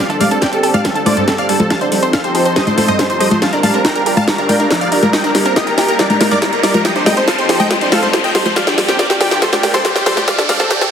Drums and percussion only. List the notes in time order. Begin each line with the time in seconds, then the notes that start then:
0.10 closed hi-hat
0.21 open hi-hat, high conga
0.31 closed hi-hat
0.42 kick, snare, closed hi-hat
0.53 closed hi-hat
0.63 open hi-hat
0.74 closed hi-hat, high conga
0.85 kick, snare, closed hi-hat
0.96 closed hi-hat
1.06 open hi-hat, high conga
1.17 closed hi-hat
1.28 kick, snare, closed hi-hat
1.38 closed hi-hat
1.49 open hi-hat
1.60 closed hi-hat, high conga
1.70 kick, snare, closed hi-hat
1.81 closed hi-hat
1.92 open hi-hat
2.03 closed hi-hat
2.13 kick, snare, closed hi-hat
2.24 closed hi-hat
2.35 open hi-hat
2.45 closed hi-hat
2.56 kick, snare, closed hi-hat
2.67 closed hi-hat, high conga
2.78 open hi-hat, high conga
2.88 closed hi-hat
2.99 kick, snare, closed hi-hat
3.10 closed hi-hat
3.21 open hi-hat
3.31 closed hi-hat, high conga
3.42 kick, snare, closed hi-hat
3.53 closed hi-hat
3.63 open hi-hat, high conga
3.74 closed hi-hat
3.85 kick, snare, closed hi-hat
3.96 closed hi-hat
4.06 open hi-hat
4.17 closed hi-hat, high conga
4.28 kick, snare, closed hi-hat
4.38 closed hi-hat
4.49 open hi-hat, high conga
4.60 closed hi-hat
4.71 kick, snare, closed hi-hat
4.81 closed hi-hat
4.92 open hi-hat
5.03 closed hi-hat, high conga
5.13 kick, snare, closed hi-hat
5.24 closed hi-hat
5.35 snare, open hi-hat
5.46 closed hi-hat
5.56 kick, snare, closed hi-hat
5.67 closed hi-hat
5.78 snare, open hi-hat
5.89 closed hi-hat
5.99 kick, snare, closed hi-hat
6.10 closed hi-hat, high conga
6.21 snare, open hi-hat, high conga
6.31 closed hi-hat
6.42 kick, snare, closed hi-hat
6.53 closed hi-hat
6.63 snare, open hi-hat
6.74 closed hi-hat, high conga
6.85 kick, snare, closed hi-hat
6.96 closed hi-hat
7.06 snare, open hi-hat, high conga
7.17 closed hi-hat
7.28 kick, snare, closed hi-hat
7.38 closed hi-hat
7.49 snare, open hi-hat
7.60 closed hi-hat, high conga
7.70 kick, snare, closed hi-hat
7.81 closed hi-hat
7.92 snare, open hi-hat, high conga
8.03 closed hi-hat
8.13 kick, snare, closed hi-hat
8.24 closed hi-hat
8.35 snare, open hi-hat
8.46 closed hi-hat, high conga
8.56 kick, snare, closed hi-hat
8.67 snare, closed hi-hat
8.78 snare, open hi-hat
8.89 snare, closed hi-hat
8.99 kick, snare, closed hi-hat
9.10 snare, closed hi-hat
9.21 snare, open hi-hat
9.31 snare, closed hi-hat
9.42 kick, snare, closed hi-hat
9.53 snare, closed hi-hat, high conga
9.63 snare, open hi-hat, high conga
9.74 snare, closed hi-hat
9.85 kick, snare, closed hi-hat
9.96 snare, closed hi-hat
10.06 snare, open hi-hat
10.17 snare, closed hi-hat, high conga
10.28 kick, snare, closed hi-hat
10.38 snare, closed hi-hat
10.49 snare, open hi-hat, high conga
10.60 snare, closed hi-hat
10.71 kick, snare, closed hi-hat
10.81 snare, closed hi-hat